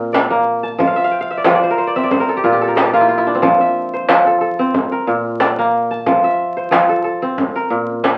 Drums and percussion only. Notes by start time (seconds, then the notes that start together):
0.14 djembe slap
0.80 djembe tone, djembe bass
0.98 djembe slap
1.44 djembe slap
2.11 djembe tone, djembe bass
2.77 djembe slap
3.43 djembe tone, djembe bass
3.61 djembe slap
4.09 djembe slap
4.74 djembe tone, djembe bass
5.40 djembe slap
6.06 djembe tone, djembe bass
6.25 djembe slap
6.72 djembe slap
7.38 djembe tone, djembe bass
7.89 djembe slap
8.04 djembe slap